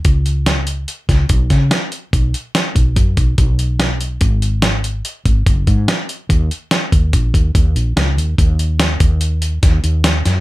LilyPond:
<<
  \new Staff \with { instrumentName = "Fretless electric bass" } { \clef bass \time 5/4 \key ees \minor \tempo 4 = 144 cis,2 r8 cis,8 b,,8 cis8 r4 | b,,8 r4 b,,8 fis,8 b,,8 b,,2 | aes,,2 r8 aes,,8 ges,,8 aes,8 r4 | ees,8 r4 ees,8 bes,,8 ees,8 ees,8 bes,,8 des,8 ees,8 |
ees,4. ees,4. ees,8 ees,4 ges,8 | }
  \new DrumStaff \with { instrumentName = "Drums" } \drummode { \time 5/4 <hh bd>8 hh8 <hh sn>8 hh8 hh8 <hh bd sn>8 <hh bd>8 <hh bd sn>8 <hh sn>8 hh8 | <hh bd>8 hh8 <hh sn>8 <hh bd>8 <hh bd>8 <hh bd>8 <hh bd>8 hh8 <hh sn>8 hh8 | <hh bd>8 hh8 <hh sn>8 hh8 hh8 <hh bd>8 <hh bd>8 <hh bd>8 <hh sn>8 hh8 | <hh bd>8 hh8 <hh sn>8 <hh bd>8 <hh bd>8 <hh bd>8 <hh bd>8 hh8 <hh sn>8 hh8 |
<hh bd>8 hh8 <hh sn>8 <hh bd>8 hh8 hh8 <hh bd sn>8 hh8 <hh sn>8 <hh sn>8 | }
>>